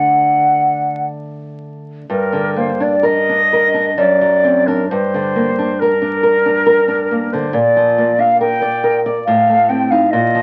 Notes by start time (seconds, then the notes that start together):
Already playing: D3 A3 D4 F#5
2.10 G2 A#4
2.33 D3
2.56 A#3 C5
2.80 D4 D5
3.03 A#4 D#5
3.29 D4
3.53 A#4
3.74 D4
3.97 F#2 D5
4.21 F#3
4.44 C4
4.66 D4 A#4
4.88 G2 C5
5.14 D3
5.36 A#3
5.59 D4
5.79 A#4
6.02 D4
6.23 A#4
6.46 D4
6.66 A#4
6.88 D4
7.11 A#3
7.32 D3 C5
7.53 A#2 D5
7.76 F3
7.98 A#3
8.18 D4 F5
8.40 A#4 G5
8.62 D5
8.84 A#4
9.06 D5
9.25 A2 F5
9.49 A3
9.69 C4 G5
9.90 D#4 F5
10.10 A#2 D#5
10.35 F3